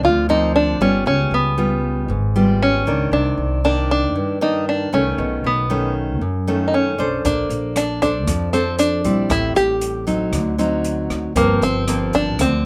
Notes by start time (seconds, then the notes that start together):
Already playing: F3 A#3 C4
0.03 D2 D3 F4
0.29 F3 A#3 C4 D#4
0.56 D4
0.80 G1 G3 B3 C#4 F4
1.06 C#2 C#3 C#4
1.31 C#2 B3
1.58 G3 B3 F4
2.08 G#1 G#2
2.36 G3 B3 F4
2.62 C#4
2.86 C#2 D#3 A#3 D4
3.12 C2 C3 D4
3.37 C2
3.64 D#3 A#3 D4
3.91 D4
4.15 G2
4.41 D#3 A#3 D4 D#4
4.69 D4
4.92 C2 D#3 A3 C#4
5.18 B1 B2
5.44 B1 B3
5.70 D#3 A3 C#4
6.21 F#2
6.47 D#3 A3 C#4
6.68 D#4
6.74 C#4
6.98 B1 D4 A4 C5
7.25 A#1 A#3 D4, kick, closed hi-hat
7.50 A#1, closed hi-hat
7.76 D4, cross-stick, closed hi-hat
8.02 D4 A4 C5, kick, closed hi-hat
8.27 F2 F3, kick, cross-stick, closed hi-hat
8.53 C4 D4 A4 C5, closed hi-hat
8.79 D4, closed hi-hat
9.04 A#1 G3 C4 E4, kick, closed hi-hat
9.29 A1 A2 E4, kick, cross-stick, closed hi-hat
9.55 A1 G4, closed hi-hat
9.81 closed hi-hat
10.07 F#3 C4 D#4, kick, closed hi-hat
10.33 D2 D3, kick, cross-stick, closed hi-hat
10.58 F#3 C4 D#4, closed hi-hat
10.84 closed hi-hat
11.10 D2, kick, cross-stick, closed hi-hat
11.35 G1 G2 F3 A#3 C4, kick, closed hi-hat
11.61 G1 C4, closed hi-hat
11.88 F3 A#3 C4, cross-stick, closed hi-hat
12.13 D4, kick, closed hi-hat
12.39 D2 D3 C4, kick, cross-stick, closed hi-hat